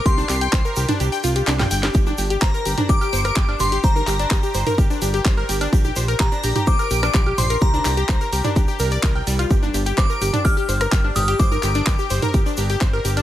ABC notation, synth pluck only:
X:1
M:4/4
L:1/16
Q:1/4=127
K:Gm
V:1 name="Synth pluck"
G D G g c B G D G g F G D g g G | G D G G c B G D G G c B G D G G | c B G D G G c B G D G G c B G D | G G c B G D G G c B G D G G c B |
G D G G c B G D G G B d B g G, F | G D G G c B G D G G c B G D G G | c B G D G G c B G D G G c B G D |]